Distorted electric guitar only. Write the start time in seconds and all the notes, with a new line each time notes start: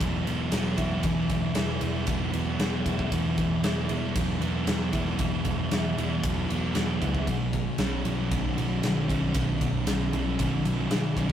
Already playing: E3 B3 E4
0.00 F#3
0.25 B3
0.52 F#3
0.77 E4
1.04 E3
1.55 E4
1.81 B3
2.08 F#3
2.33 B3
2.59 F#3
2.86 E4
3.11 E3
3.64 E4
3.89 B3
4.14 F#3
4.41 B3
4.67 F#3
4.93 E4
5.19 E3
5.72 E4
5.98 B3
6.24 F#3
6.50 B3
6.75 F#3
7.01 E4
7.28 B2
7.80 C#4
8.06 F#3
8.32 D#3
8.58 F#3
8.84 D#3
9.08 C#4
9.35 B2
9.87 C#4
10.12 F#3
10.39 D#3
10.63 F#3
10.90 D#3
11.17 C#4